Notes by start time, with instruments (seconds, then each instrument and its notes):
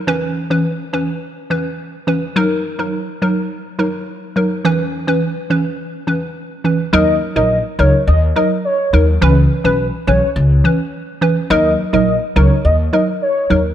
0.07 synth pluck E3 C#4 B4
0.50 synth pluck E3 C#4 B4
0.93 synth pluck E3 C#4 B4
1.50 synth pluck E3 C#4 B4
2.07 synth pluck E3 C#4 B4
2.36 synth pluck F#3 D#4 A#4
2.79 synth pluck F#3 D#4 A#4
3.22 synth pluck F#3 D#4 A#4
3.79 synth pluck F#3 D#4 A#4
4.36 synth pluck F#3 D#4 A#4
4.65 synth pluck E3 C#4 B4
5.07 synth pluck E3 C#4 B4
5.50 synth pluck E3 C#4 B4
6.07 synth pluck E3 C#4 B4
6.64 synth pluck E3 C#4 B4
6.93 upright bass D#2, synth pluck F#3 D#4 A#4, soft synth lead D#5
7.36 upright bass A#1, synth pluck F#3 D#4 A#4, soft synth lead D#5
7.79 upright bass C#2, synth pluck F#3 D#4 A#4, soft synth lead C#5
8.07 upright bass D#2, soft synth lead D#5
8.36 synth pluck F#3 D#4 A#4, soft synth lead D#5
8.65 soft synth lead C#5
8.93 upright bass D#2, synth pluck F#3 D#4 A#4
9.21 upright bass C#2, synth pluck E3 C#4 B4, soft synth lead B4
9.64 upright bass B1, synth pluck E3 C#4 B4, soft synth lead B4
10.07 upright bass B1, synth pluck E3 C#4 B4, soft synth lead C#5
10.36 upright bass C#2
10.64 synth pluck E3 C#4 B4
11.21 synth pluck E3 C#4 B4
11.50 upright bass D#2, synth pluck F#3 D#4 A#4, soft synth lead D#5
11.93 upright bass A#1, synth pluck F#3 D#4 A#4, soft synth lead D#5
12.36 upright bass C#2, synth pluck F#3 D#4 A#4, soft synth lead C#5
12.65 upright bass D#2, soft synth lead D#5
12.93 synth pluck F#3 D#4 A#4, soft synth lead D#5
13.22 soft synth lead C#5
13.50 upright bass D#2, synth pluck F#3 D#4 A#4